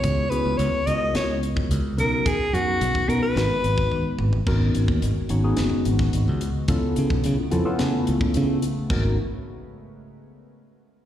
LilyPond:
<<
  \new Staff \with { instrumentName = "Soprano saxophone" } { \time 4/4 \key gis \minor \tempo 4 = 108 cis''8 b'8 cis''8 dis''8 cis''8 r4 ais'8 | gis'8 fis'4 ais'16 b'4.~ b'16 r8 | r1 | r1 |
r1 | }
  \new Staff \with { instrumentName = "Tine electric piano" } { \time 4/4 \key gis \minor <b cis' e' fis' gis'>8 <b cis' e' fis' gis'>4 <b cis' e' fis' ais'>4.~ <b cis' e' fis' ais'>16 r16 <b cis' dis' fis' ais'>8~ | <b cis' dis' fis' ais'>8 <b cis' dis' fis' ais'>4 <b cis' dis' fis' b'>8 <gis b dis' fis' b'>4.~ <gis b dis' fis' b'>16 r16 | <b cis' dis' fis' ais'>4~ <b cis' dis' fis' ais'>16 r16 <b cis' dis' fis' cis''>16 <b cis' dis' fis' gis'>4.~ <b cis' dis' fis' gis'>16 r8 | <b cis' e' eis' a'>4~ <b cis' e' eis' a'>16 r16 <b cis' e' eis' a'>16 <b cis' e' eis' a'>4.~ <b cis' e' eis' a'>16 r8 |
<b cis' dis' fis' ais'>8 r2. r8 | }
  \new Staff \with { instrumentName = "Ambient pad" } { \time 4/4 \key gis \minor << { r1 | r1 | <gis fis'>1 | <cis a>1 |
r1 | } \\ { r1 | r1 | b1~ | b1 |
r1 | } >> }
  \new Staff \with { instrumentName = "Fingered electric bass" } { \clef bass \time 4/4 \key gis \minor cis,8 r16 cis,16 cis,16 r16 cis,8 cis,8. cis,16 cis,8 b,,8 | r8 fis,16 r16 b,,16 r16 b,16 r16 gis,,16 r16 gis,,8 r8 gis,,8 | gis,,8 gis,,16 dis,16 gis,,16 r16 gis,,8 fis,,16 r16 gis,,8 gis,,16 cis,8 r16 | cis,16 r16 cis16 b,,16 cis16 r16 eis,16 r16 cis16 r16 cis,16 r16 cis8 r8 |
gis,,8 r2. r8 | }
  \new DrumStaff \with { instrumentName = "Drums" } \drummode { \time 4/4 <hh bd>8 hh8 hh8 hh8 <hh sn>8 hh16 bd16 hh8 hh8 | <hh bd>8 hh8 hh16 bd16 hh8 <hh sn>8 hh16 bd16 tommh8 toml16 tomfh16 | <cymc bd>8 hh16 bd16 hh8 hh8 <hh sn>8 hh16 <bd sn>16 hh8 hh8 | <hh bd>8 hh16 bd16 hh8 hh8 <hh sn>8 hh16 bd16 hh8 hh8 |
<cymc bd>4 r4 r4 r4 | }
>>